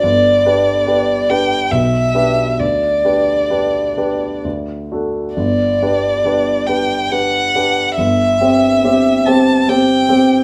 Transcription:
<<
  \new Staff \with { instrumentName = "Violin" } { \time 3/4 \key g \major \tempo 4 = 69 d''4. g''8 e''4 | d''2 r4 | d''4. g''8 fis''4 | e''4. a''8 g''4 | }
  \new Staff \with { instrumentName = "Grand piano" } { \time 3/4 \key g \major g,,8 <d' g' b'>8 <d' g' b'>8 <d' g' b'>8 b,,8 <d' g' b'>8 | d,8 <d' g' b'>8 <d' g' b'>8 <d' g' b'>8 d,8 <d' fis' a'>8 | g,,8 <d' g' b'>8 <d' g' b'>8 <d' g' b'>8 <d' g' b'>8 <d' g' b'>8 | g,,8 <c' g' c''>8 <c' g' c''>8 <c' g' c''>8 <c' g' c''>8 <c' g' c''>8 | }
>>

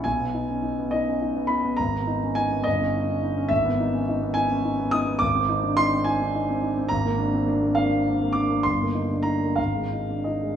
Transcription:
\new Staff \with { instrumentName = "Grand piano" } { \time 6/8 \key gis \minor \tempo 4. = 70 << { gis''4. dis''4 b''8 | ais''4 gis''8 dis''4. | e''4. gis''4 dis'''8 | \key aes \lydian d'''4 c'''8 aes''4. |
bes''4. f''4 d'''8 | c'''4 bes''8 f''4 ees''8 | } \\ { b,,16 b16 dis'16 cis'16 dis'16 b16 dis'16 cis'16 dis'16 b16 dis'16 b16 | gis,,16 b16 dis'16 cis'16 dis'16 b16 g,,16 cis'16 dis'16 cis'16 dis'16 cis'16 | gis,,16 b16 dis'16 cis'16 dis'16 b16 dis'16 cis'16 dis'16 b16 dis'16 b16 | aes,,16 c'16 ees'16 d'16 ees'16 c'16 ees'16 d'16 ees'16 c'16 ees'16 c'16 |
aes,,16 bes16 d'16 c'16 d'16 bes16 d'16 c'16 d'16 bes16 d'16 bes16 | g,,16 bes16 ees'16 d'16 ees'16 bes16 aes,,16 aes16 ees'16 d'16 ees'16 aes16 | } >> }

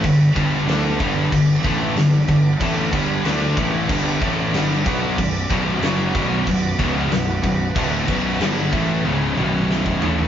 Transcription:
<<
  \new Staff \with { instrumentName = "Analog synth pad" } { \time 4/4 \key b \minor \tempo 4 = 93 << { d''1~ | d''1~ | d''1~ | d''1 | } \\ { <d b>1~ | <d b>1 | <b fis'>1~ | <b fis'>1 | } >> }
  \new Staff \with { instrumentName = "Distorted electric guitar" } { \clef bass \time 4/4 \key b \minor <g, d>8 <g, d g>8 <d a d'>8 <g, d g>8 <g, d>8 <a, e a>8 <g, d>8 <g, d>8 | <a, e a>8 <g, d g>8 <d a d'>8 <a, e a>8 <g, d g>8 <a, e a>8 <g, d g>8 <b, fis b>8 | <b,, fis,>8 <b,, fis, b,>8 <fis, cis fis>8 <b,, fis, b,>8 <b,, fis,>8 <cis, gis, cis>8 <b,, fis,>8 <b,, fis,>8 | <d, a, d>8 <b,, fis, b,>8 <g, d g>8 <a, e a>8 <cis, gis, cis>8 <b,, fis, b,>4 <a, e a>8 | }
  \new Staff \with { instrumentName = "Distorted electric guitar" } { \clef bass \time 4/4 \key b \minor <g, d>8 <g, d g>8 <d a d'>8 <g, d g>8 <g, d>8 <a, e a>8 <g, d>8 <g, d>8 | <a, e a>8 <g, d g>8 <d a d'>8 <a, e a>8 <g, d g>8 <a, e a>8 <g, d g>8 <b, fis b>8 | <b,, fis,>8 <b,, fis, b,>8 <fis, cis fis>8 <b,, fis, b,>8 <b,, fis,>8 <cis, gis, cis>8 <b,, fis,>8 <b,, fis,>8 | <d, a, d>8 <b,, fis, b,>8 <g, d g>8 <a, e a>8 <cis, gis, cis>8 <b,, fis, b,>4 <a, e a>8 | }
  \new Staff \with { instrumentName = "Overdriven electric guitar" } { \clef bass \time 4/4 \key b \minor <g, d>8 <g, d g>8 <d a d'>8 <g, d g>8 <g, d>8 <a, e a>8 <g, d>8 <g, d>8 | <a, e a>8 <g, d g>8 <d a d'>8 <a, e a>8 <g, d g>8 <a, e a>8 <g, d g>8 <b, fis b>8 | <b,, fis,>8 <b,, fis, b,>8 <fis, cis fis>8 <b,, fis, b,>8 <b,, fis,>8 <cis, gis, cis>8 <b,, fis,>8 <b,, fis,>8 | <d, a, d>8 <b,, fis, b,>8 <g, d g>8 <a, e a>8 <cis, gis, cis>8 <b,, fis, b,>4 <a, e a>8 | }
  \new Staff \with { instrumentName = "Fingered electric bass" } { \clef bass \time 4/4 \key b \minor g,,8 g,,8 d,8 g,,8 g,,8 a,,8 g,,8 g,,8 | a,,8 g,,8 d,8 a,,8 g,,8 a,,8 g,,8 b,,8 | b,,,8 b,,,8 fis,,8 b,,,8 b,,,8 cis,,8 b,,,8 b,,,8 | d,,8 b,,,8 g,,8 a,,8 cis,,8 b,,,4 a,,8 | }
  \new DrumStaff \with { instrumentName = "Drums" } \drummode { \time 4/4 <cymc bd>8 <cymc bd>8 <cymc sn>8 <cymc bd>8 <cymc bd>8 <cymc bd>8 <cymc sn>8 <cymc bd>8 | <cymc bd>8 <cymc bd>8 <cymc sn>8 <cymc bd>8 <cymc bd>8 <cymc bd>8 <cymc sn>8 <cymc bd>8 | <cymc bd>8 <cymc bd>8 <cymc sn>8 <cymc bd>8 <cymc bd>8 <cymc bd>8 <cymc sn>8 <cymc bd>8 | <cymc bd>8 <cymc bd>8 <cymc sn>8 <cymc bd>8 tommh8 toml8 sn16 bd16 tomfh16 tomfh16 | }
>>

